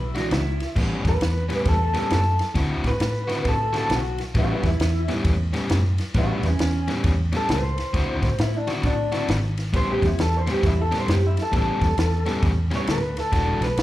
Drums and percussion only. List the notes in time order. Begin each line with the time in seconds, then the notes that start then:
0.15 snare, ride
0.31 snare, ride
0.60 snare, ride
0.76 kick, snare, crash
1.05 kick, snare, ride
1.21 snare, ride
1.50 snare, ride
1.65 kick, snare, ride
1.94 snare, ride
2.11 snare, ride
2.39 snare, ride
2.55 kick, snare, ride
2.84 kick, snare, ride
3.00 snare, ride
3.29 snare, ride
3.45 kick, snare, ride
3.74 snare, ride
3.90 snare, ride
4.18 snare, ride
4.35 kick, snare, ride
4.63 kick, snare, ride
4.80 snare, ride
5.08 snare, ride
5.25 kick, snare, ride
5.54 snare, ride
5.70 snare, ride
5.98 snare, ride
6.14 kick, snare, ride
6.43 snare, ride
6.59 snare, ride
6.88 snare, ride
7.04 kick, snare, ride
7.33 snare, ride
7.49 snare, ride
7.78 snare, ride
7.94 kick, snare, ride
8.23 kick, snare, ride
8.38 snare, ride
8.67 snare, ride
8.83 kick, snare, ride
9.12 snare, ride
9.28 snare, ride
9.58 snare, ride
9.74 kick, snare, ride
10.02 kick, snare, ride
10.19 snare, ride
10.47 snare, ride
10.63 kick, snare, ride
10.92 snare, ride
11.08 snare, ride
11.37 snare, ride
11.53 kick, snare, ride
11.82 kick, snare, ride
11.98 snare, ride
12.26 snare, ride
12.43 kick, snare, ride
12.71 snare, ride
12.87 snare, ride
13.17 snare, ride
13.33 kick, snare, ride
13.62 snare, ride
13.77 snare, ride